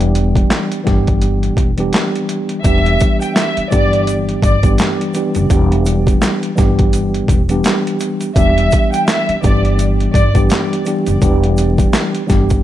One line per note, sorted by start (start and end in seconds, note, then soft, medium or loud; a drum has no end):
0.00 0.41 E1 loud
0.00 0.79 E3 medium
0.00 0.79 G3 medium
0.00 0.79 B3 medium
0.00 0.80 D4 medium
0.00 0.80 G4 loud
0.00 closed hi-hat medium
0.15 closed hi-hat medium
0.35 kick medium
0.35 closed hi-hat medium
0.50 snare loud
0.50 clap loud
0.50 closed hi-hat medium
0.72 closed hi-hat medium
0.84 1.48 G1 medium
0.84 1.69 E3 medium
0.84 1.69 G3 medium
0.84 1.69 B3 medium
0.84 1.70 D4 medium
0.84 1.70 G4 loud
0.84 kick medium
0.84 snare soft
0.84 closed hi-hat medium
1.07 kick loud
1.07 closed hi-hat soft
1.22 closed hi-hat medium
1.43 closed hi-hat soft
1.57 1.88 E1 medium
1.57 kick medium
1.57 closed hi-hat medium
1.77 2.58 E3 medium
1.77 2.58 G3 medium
1.77 2.59 B3 medium
1.77 2.59 D4 medium
1.77 2.60 G4 loud
1.77 closed hi-hat medium
1.93 snare loud
1.93 clap medium
1.93 closed hi-hat medium
2.15 closed hi-hat medium
2.29 closed hi-hat medium
2.49 closed hi-hat medium
2.64 2.96 E1 loud
2.64 3.64 E3 medium
2.64 3.65 G3 medium
2.64 3.65 B3 medium
2.64 3.65 D4 medium
2.64 3.66 G4 medium
2.64 3.17 E5 loud
2.64 kick loud
2.64 closed hi-hat medium
2.64 shaker medium
2.86 closed hi-hat medium
3.00 kick medium
3.00 closed hi-hat medium
3.00 shaker medium
3.21 3.34 G5 medium
3.21 closed hi-hat medium
3.21 shaker medium
3.36 3.68 E5 medium
3.36 snare loud
3.36 clap medium
3.36 closed hi-hat medium
3.36 shaker medium
3.57 muted upright bass stroke soft
3.57 closed hi-hat medium
3.70 4.34 G1 medium
3.70 4.55 E3 loud
3.70 4.55 G3 medium
3.70 4.56 B3 medium
3.70 4.56 D4 medium
3.70 4.56 G4 loud
3.70 4.04 D5 medium
3.70 kick medium
3.70 closed hi-hat medium
3.70 shaker soft
3.93 closed hi-hat soft
4.07 closed hi-hat medium
4.07 shaker medium
4.29 closed hi-hat soft
4.42 4.74 G1 medium
4.42 4.62 D5 medium
4.42 kick medium
4.42 closed hi-hat medium
4.42 shaker medium
4.63 5.10 E3 medium
4.63 5.11 G3 medium
4.63 5.11 B3 medium
4.63 5.12 D4 medium
4.63 5.12 G4 loud
4.63 kick loud
4.63 closed hi-hat medium
4.63 shaker soft
4.78 snare loud
4.78 clap medium
4.78 closed hi-hat medium
4.78 shaker medium
5.01 closed hi-hat medium
5.14 5.47 E3 medium
5.14 5.48 G3 medium
5.14 5.48 B3 medium
5.14 5.49 D4 medium
5.14 5.49 G4 medium
5.14 closed hi-hat medium
5.14 shaker soft
5.35 5.49 F#1 medium
5.35 closed hi-hat medium
5.35 shaker medium
5.50 6.12 E1 loud
5.50 6.50 E3 medium
5.50 6.50 G3 medium
5.50 6.51 B3 medium
5.50 6.51 D4 medium
5.50 6.52 G4 loud
5.50 kick loud
5.50 closed hi-hat medium
5.50 shaker medium
5.72 closed hi-hat medium
5.86 closed hi-hat medium
5.86 shaker medium
6.07 kick medium
6.07 closed hi-hat medium
6.07 shaker medium
6.22 snare loud
6.22 clap medium
6.22 closed hi-hat medium
6.22 shaker medium
6.43 closed hi-hat medium
6.55 7.20 G1 medium
6.55 7.40 E3 medium
6.55 7.40 G3 medium
6.55 7.41 B3 medium
6.55 7.41 D4 medium
6.55 7.42 G4 loud
6.55 kick loud
6.55 snare soft
6.55 closed hi-hat medium
6.55 shaker soft
6.79 kick loud
6.79 closed hi-hat soft
6.93 closed hi-hat medium
6.93 shaker medium
7.14 closed hi-hat soft
7.28 7.60 E1 medium
7.28 kick medium
7.28 closed hi-hat medium
7.28 shaker medium
7.48 8.29 E3 medium
7.48 8.30 G3 medium
7.48 8.30 B3 medium
7.48 8.30 D4 medium
7.48 8.31 G4 loud
7.48 closed hi-hat medium
7.48 shaker soft
7.64 snare loud
7.64 clap loud
7.64 closed hi-hat medium
7.64 shaker medium
7.87 closed hi-hat medium
8.00 closed hi-hat medium
8.00 shaker soft
8.21 closed hi-hat medium
8.21 shaker medium
8.35 8.67 E1 loud
8.35 9.36 E3 medium
8.35 9.36 G3 medium
8.35 9.36 B3 medium
8.35 9.37 D4 medium
8.35 9.37 G4 medium
8.35 8.89 E5 medium
8.35 kick loud
8.35 closed hi-hat medium
8.35 shaker medium
8.58 closed hi-hat medium
8.71 kick medium
8.71 closed hi-hat medium
8.71 shaker medium
8.92 9.06 G5 medium
8.92 closed hi-hat medium
8.92 shaker medium
9.07 9.39 E5 medium
9.07 snare loud
9.07 clap loud
9.07 closed hi-hat medium
9.07 shaker medium
9.29 muted upright bass stroke medium
9.29 closed hi-hat medium
9.41 10.06 G1 medium
9.41 10.26 E3 loud
9.41 10.27 G3 medium
9.41 10.27 B3 medium
9.41 10.27 D4 medium
9.41 10.28 G4 loud
9.41 9.75 D5 medium
9.41 kick medium
9.41 closed hi-hat medium
9.41 shaker soft
9.65 closed hi-hat soft
9.79 closed hi-hat medium
9.79 shaker medium
10.00 closed hi-hat soft
10.13 10.45 G1 loud
10.13 10.33 D5 medium
10.13 kick medium
10.13 closed hi-hat medium
10.13 shaker medium
10.34 10.82 E3 medium
10.34 10.82 G3 medium
10.34 10.82 B3 medium
10.34 10.83 D4 medium
10.34 10.83 G4 loud
10.34 kick medium
10.34 closed hi-hat medium
10.34 shaker soft
10.50 snare loud
10.50 clap loud
10.50 closed hi-hat medium
10.50 shaker medium
10.73 closed hi-hat medium
10.85 11.19 E3 medium
10.85 11.19 G3 medium
10.85 11.20 B3 medium
10.85 11.20 D4 medium
10.85 11.20 G4 medium
10.85 closed hi-hat medium
10.85 shaker soft
11.06 11.20 F#1 medium
11.06 closed hi-hat medium
11.06 shaker medium
11.22 11.84 E1 loud
11.22 12.22 E3 loud
11.22 12.22 G3 medium
11.22 12.22 B3 medium
11.22 12.23 D4 medium
11.22 12.23 G4 loud
11.22 kick loud
11.22 closed hi-hat medium
11.22 shaker medium
11.43 closed hi-hat medium
11.57 closed hi-hat medium
11.57 shaker medium
11.78 kick medium
11.78 closed hi-hat medium
11.78 shaker medium
11.93 snare loud
11.93 clap loud
11.93 closed hi-hat medium
11.93 shaker medium
12.15 closed hi-hat medium
12.27 12.63 G1 medium
12.27 12.63 E3 medium
12.27 12.63 G3 medium
12.27 12.63 B3 medium
12.27 12.63 D4 medium
12.27 12.63 G4 loud
12.27 kick medium
12.27 snare soft
12.27 closed hi-hat medium
12.27 shaker soft
12.50 kick loud
12.50 closed hi-hat soft
12.50 shaker soft